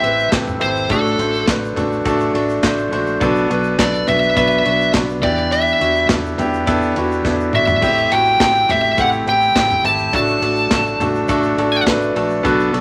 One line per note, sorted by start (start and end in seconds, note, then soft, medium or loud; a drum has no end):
0.00 0.27 A1 medium
0.00 0.90 A2 medium
0.00 0.02 C4 loud
0.00 0.27 C4 medium
0.00 0.03 E4 loud
0.00 0.28 E4 medium
0.00 0.04 G4 loud
0.00 0.28 G4 medium
0.00 0.32 A4 loud
0.00 0.04 B4 medium
0.00 0.92 C5 medium
0.00 0.28 E5 medium
0.00 ride medium
0.04 0.28 B4 medium
0.19 shaker medium
0.31 0.56 A1 loud
0.31 0.56 C4 medium
0.31 0.56 E4 medium
0.31 0.57 G4 medium
0.31 0.57 A4 medium
0.31 kick loud
0.31 snare loud
0.31 clap medium
0.31 ride medium
0.31 shaker medium
0.47 floor tom medium
0.47 shaker soft
0.60 0.85 G#1 medium
0.60 0.85 C4 medium
0.60 0.85 E4 medium
0.60 0.85 G4 medium
0.60 0.85 A4 medium
0.60 0.91 C5 loud
0.60 ride medium
0.76 shaker soft
0.89 1.14 A1 loud
0.89 1.73 A2 medium
0.89 1.14 A3 medium
0.89 1.14 D4 medium
0.89 1.14 F#4 medium
0.89 1.15 A4 loud
0.89 1.44 A4 medium
0.89 kick loud
0.89 ride medium
0.89 shaker medium
1.06 shaker soft
1.18 1.42 A1 loud
1.18 1.43 A3 medium
1.18 1.43 D4 medium
1.18 1.43 F#4 medium
1.18 1.44 C5 medium
1.18 ride medium
1.18 shaker soft
1.34 shaker soft
1.47 1.72 A1 medium
1.47 1.71 A3 medium
1.47 1.72 D4 medium
1.47 1.72 F#4 medium
1.47 1.72 B4 medium
1.47 kick loud
1.47 snare loud
1.47 clap medium
1.47 ride medium
1.47 shaker medium
1.65 shaker soft
1.75 2.00 A1 medium
1.75 2.00 A3 medium
1.75 2.00 D4 medium
1.75 2.01 F#4 medium
1.75 2.01 A4 medium
1.75 floor tom medium
1.75 ride medium
1.75 shaker soft
1.92 shaker soft
2.04 2.29 A1 loud
2.04 2.29 A3 loud
2.04 2.30 D4 loud
2.04 2.30 F#4 loud
2.04 2.30 A4 loud
2.04 kick loud
2.04 ride medium
2.04 shaker medium
2.20 shaker medium
2.33 2.58 A1 loud
2.33 2.58 A3 medium
2.33 2.58 D4 medium
2.33 2.59 F#4 medium
2.33 2.59 A4 medium
2.33 ride medium
2.49 shaker medium
2.63 2.87 A1 medium
2.63 2.87 A3 medium
2.63 2.88 D4 medium
2.63 2.88 F#4 medium
2.63 2.88 C5 medium
2.63 kick loud
2.63 snare loud
2.63 clap medium
2.63 ride medium
2.63 shaker medium
2.78 shaker soft
2.91 3.16 A#1 loud
2.91 3.16 A3 medium
2.91 3.16 D4 medium
2.91 3.16 F#4 medium
2.91 3.17 C5 loud
2.91 ride medium
3.06 shaker soft
3.20 3.45 B1 loud
3.20 4.04 B2 medium
3.20 3.45 B3 loud
3.20 3.45 D4 loud
3.20 3.45 F#4 loud
3.20 3.46 A4 loud
3.20 kick loud
3.20 ride medium
3.20 shaker medium
3.35 shaker medium
3.48 3.74 B1 loud
3.48 3.73 B3 medium
3.48 3.74 D4 medium
3.48 3.74 F#4 medium
3.48 3.74 B4 medium
3.48 ride medium
3.48 shaker soft
3.64 shaker medium
3.78 4.02 B1 loud
3.78 4.02 B3 medium
3.78 4.03 D4 medium
3.78 4.03 F#4 medium
3.78 4.03 A4 medium
3.78 4.08 D5 medium
3.78 kick loud
3.78 snare loud
3.78 clap medium
3.78 ride medium
3.78 shaker medium
3.94 shaker soft
4.06 4.31 B1 loud
4.06 4.31 B3 medium
4.06 4.31 D4 medium
4.06 4.31 F#4 medium
4.06 4.32 B4 medium
4.06 4.36 E5 medium
4.06 floor tom medium
4.06 ride medium
4.06 shaker soft
4.23 shaker soft
4.35 4.60 B1 loud
4.35 4.60 B3 medium
4.35 4.60 D4 medium
4.35 4.61 F#4 medium
4.35 4.61 B4 loud
4.35 4.91 E5 loud
4.35 kick loud
4.35 ride medium
4.35 shaker medium
4.50 shaker medium
4.64 4.89 B1 medium
4.64 4.89 B3 medium
4.64 4.89 D4 medium
4.64 4.89 F#4 medium
4.64 4.90 B4 medium
4.64 ride medium
4.80 shaker soft
4.93 5.23 B1 loud
4.93 5.18 B3 medium
4.93 5.18 D4 medium
4.93 5.18 F#4 medium
4.93 5.18 B4 medium
4.93 kick loud
4.93 snare loud
4.93 clap medium
4.93 ride medium
4.93 shaker medium
5.10 shaker soft
5.21 5.70 E2 loud
5.21 6.05 E3 medium
5.21 5.71 B3 medium
5.21 5.71 D4 medium
5.21 5.71 E4 medium
5.21 5.72 G4 medium
5.21 5.50 D5 medium
5.21 kick loud
5.21 ride medium
5.37 shaker soft
5.52 6.06 E5 loud
5.52 ride medium
5.52 shaker medium
5.67 shaker medium
5.79 6.04 E2 medium
5.79 6.04 B3 medium
5.79 6.05 D4 medium
5.79 6.05 E4 medium
5.79 6.05 F#4 medium
5.79 ride medium
5.79 shaker soft
5.95 shaker medium
6.09 6.33 E2 loud
6.09 6.33 B3 medium
6.09 6.34 D4 medium
6.09 6.34 E4 medium
6.09 6.34 A4 medium
6.09 kick loud
6.09 snare loud
6.09 clap medium
6.09 ride medium
6.09 shaker medium
6.26 shaker soft
6.38 6.62 E2 medium
6.38 6.62 B3 medium
6.38 6.63 D4 medium
6.38 6.63 E4 medium
6.38 6.63 G4 loud
6.38 floor tom medium
6.38 ride medium
6.38 shaker soft
6.53 shaker soft
6.66 6.91 E2 loud
6.66 6.91 B3 loud
6.66 6.91 D4 medium
6.66 6.91 E4 medium
6.66 6.92 A4 loud
6.66 kick loud
6.66 ride medium
6.66 shaker medium
6.82 shaker medium
6.96 7.20 E2 medium
6.96 7.20 B3 medium
6.96 7.20 D4 medium
6.96 7.21 E4 medium
6.96 7.21 F#4 medium
6.96 ride medium
7.12 shaker soft
7.24 7.49 E2 medium
7.24 7.49 B3 medium
7.24 7.49 D4 medium
7.24 7.49 E4 medium
7.24 7.50 A4 medium
7.24 kick loud
7.24 snare medium
7.24 shaker medium
7.40 shaker medium
7.52 7.78 G#1 medium
7.52 7.77 B3 medium
7.52 7.77 D4 medium
7.52 7.78 E4 medium
7.52 7.78 F#4 medium
7.52 8.14 E5 medium
7.52 mid tom medium
7.67 floor tom medium
7.67 shaker soft
7.81 8.06 A1 medium
7.81 8.65 A2 medium
7.81 8.06 A3 medium
7.81 8.06 C4 medium
7.81 8.07 E4 medium
7.81 8.07 G4 medium
7.81 kick loud
7.81 crash medium
7.81 shaker medium
7.98 shaker medium
8.10 8.35 A1 medium
8.10 8.35 A3 medium
8.10 8.35 C4 medium
8.10 8.36 E4 medium
8.10 8.36 F#4 medium
8.10 8.40 G5 medium
8.10 ride medium
8.10 shaker soft
8.25 shaker soft
8.40 8.64 A1 loud
8.40 8.64 A3 medium
8.40 8.64 C4 medium
8.40 8.65 E4 medium
8.40 8.65 G4 medium
8.40 8.71 G5 medium
8.40 kick loud
8.40 snare loud
8.40 clap medium
8.40 ride medium
8.40 shaker medium
8.55 shaker soft
8.69 8.93 A1 loud
8.69 8.93 A3 medium
8.69 8.94 C4 medium
8.69 8.94 E4 medium
8.69 8.94 G4 medium
8.69 9.00 E5 medium
8.69 floor tom medium
8.69 ride medium
8.69 shaker soft
8.84 shaker soft
8.97 9.22 A1 loud
8.97 9.22 A3 medium
8.97 9.22 C4 medium
8.97 9.22 E4 medium
8.97 9.23 G4 loud
8.97 9.08 F#5 loud
8.97 kick loud
8.97 ride medium
8.97 shaker medium
9.12 shaker medium
9.26 9.50 A1 medium
9.26 9.51 A3 medium
9.26 9.51 C4 medium
9.26 9.51 E4 medium
9.26 9.51 G4 medium
9.26 9.85 G5 loud
9.26 ride medium
9.41 shaker medium
9.55 9.79 A1 loud
9.55 9.80 A3 medium
9.55 9.80 C4 medium
9.55 9.80 E4 medium
9.55 9.80 G4 medium
9.55 kick loud
9.55 snare loud
9.55 clap medium
9.55 ride medium
9.55 shaker medium
9.70 floor tom medium
9.70 shaker soft
9.83 10.08 G#1 medium
9.83 10.08 A3 medium
9.83 10.08 C4 medium
9.83 10.09 E4 medium
9.83 10.09 G4 medium
9.83 10.14 A5 loud
9.83 ride medium
9.99 shaker soft
10.12 10.37 A1 loud
10.12 10.96 A2 medium
10.12 10.37 A3 medium
10.12 10.37 D4 medium
10.12 10.38 F#4 medium
10.12 10.38 A4 loud
10.12 11.84 A5 medium
10.12 kick loud
10.12 ride medium
10.12 shaker medium
10.27 shaker medium
10.41 10.66 A1 loud
10.41 10.66 A3 medium
10.41 10.66 D4 medium
10.41 10.66 F#4 medium
10.41 10.67 A4 medium
10.41 ride medium
10.41 shaker soft
10.56 shaker medium
10.70 10.95 A1 medium
10.70 10.95 A3 medium
10.70 10.95 D4 medium
10.70 10.96 F#4 medium
10.70 10.96 A4 medium
10.70 kick loud
10.70 snare loud
10.70 clap medium
10.70 ride medium
10.70 shaker medium
10.87 shaker soft
10.99 11.23 A1 loud
10.99 11.24 A3 medium
10.99 11.24 D4 medium
10.99 11.25 F#4 medium
10.99 11.25 A4 loud
10.99 floor tom medium
10.99 ride medium
10.99 shaker soft
11.15 shaker soft
11.28 11.53 A1 loud
11.28 11.53 A3 loud
11.28 11.53 D4 loud
11.28 11.53 F#4 loud
11.28 11.53 A4 loud
11.28 kick loud
11.28 ride medium
11.28 shaker medium
11.43 shaker medium
11.57 11.81 A1 loud
11.57 11.82 A3 medium
11.57 11.82 D4 medium
11.57 11.82 F#4 medium
11.57 11.83 A4 loud
11.57 ride medium
11.73 shaker medium
11.86 12.10 A1 medium
11.86 12.11 A3 medium
11.86 12.11 D4 medium
11.86 12.11 F#4 medium
11.86 12.11 B4 medium
11.86 kick loud
11.86 snare loud
11.86 clap medium
11.86 ride medium
11.86 shaker medium
12.02 shaker soft
12.15 12.39 A#1 loud
12.15 12.39 A3 medium
12.15 12.40 D4 medium
12.15 12.40 F#4 medium
12.15 12.40 A4 loud
12.15 ride medium
12.30 shaker soft
12.43 12.68 B1 loud
12.43 12.81 B2 medium
12.43 12.68 B3 loud
12.43 12.68 D4 loud
12.43 12.69 F#4 loud
12.43 12.69 A4 loud
12.43 kick loud
12.43 ride medium
12.43 shaker medium
12.60 shaker medium
12.72 12.81 B1 loud
12.72 12.81 B3 medium
12.72 12.81 D4 medium
12.72 12.81 F#4 medium
12.72 12.81 A4 medium
12.72 ride medium
12.72 shaker soft